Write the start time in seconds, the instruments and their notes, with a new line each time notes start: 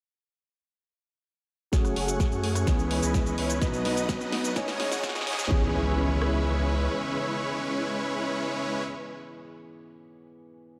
1.72 sub bass F#1, felt piano F#3 A3 C#4 G#4, supersaw synth A3 C#4 F#4 G#4 C#5, analog synth pad A3 F#5 G#5 C#6, kick, snare, closed hi-hat, riser, shaker
1.85 cross-stick, closed hi-hat, shaker
1.96 sub bass F#1, supersaw synth A3 C#4 F#4 G#4 C#5, open hi-hat
2.08 closed hi-hat, shaker
2.20 kick, cross-stick, snare, closed hi-hat, shaker
2.32 sub bass F#2, supersaw synth A3 C#4 F#4 G#4 C#5, closed hi-hat, shaker
2.44 open hi-hat
2.55 cross-stick, closed hi-hat, shaker
2.66 sub bass C#2, felt piano E3 B3 C#4 G#4, supersaw synth G#3 C#4 E4 B4 C#5, analog synth pad E4 B4, kick, snare, closed hi-hat, shaker
2.79 closed hi-hat, shaker
2.91 open hi-hat
3.03 sub bass C#2, supersaw synth G#3 C#4 E4 B4 D#5, closed hi-hat, shaker
3.14 kick, snare, closed hi-hat, shaker
3.26 closed hi-hat, shaker
3.38 sub bass C#2, supersaw synth G#3 C#4 E4 B4 C#5, open hi-hat
3.50 closed hi-hat, shaker
3.61 sub bass B1, felt piano B2 F#3 B3 D#4 B4, supersaw synth F#3 B3 D#4 B4 D#5, analog synth pad D#5 F#5 D#6, kick, snare, closed hi-hat, shaker
3.73 closed hi-hat, shaker
3.85 sub bass B1, supersaw synth F#3 B3 D#4 B4 D#5, snare, open hi-hat
3.97 closed hi-hat, shaker
4.09 kick, snare, closed hi-hat, shaker
4.21 sub bass B1, supersaw synth F#3 B3 D#4 B4 D#5, closed hi-hat, shaker
4.32 snare, open hi-hat
4.44 closed hi-hat, shaker
4.55 sub bass G#1, felt piano G#2 G#3 C#4 D#4 C#5, supersaw synth G#3 C#4 D#4 C#5 D#5, analog synth pad C#5 G#5 D#6, kick, snare, closed hi-hat, shaker
4.68 snare, open hi-hat, shaker
4.80 snare, open hi-hat
4.92 sub bass G#1, supersaw synth G#3 C#4 D#4 C#5 F#5, snare, closed hi-hat, shaker
5.03 kick, snare, closed hi-hat, shaker
5.09 snare
5.15 snare, closed hi-hat, shaker
5.21 snare
5.27 sub bass G#2, supersaw synth G#3 C#4 D#4 C#5 D#5, snare, open hi-hat
5.33 snare
5.39 snare, closed hi-hat, shaker
5.45 snare
5.49 sub bass C#2, analog synth pad C#3 C#4 B4 E5, felt piano E3 B3 C#4 G#4, supersaw synth G#3 C#4 E4 B4 C#5, kick, impact
6.22 cross-stick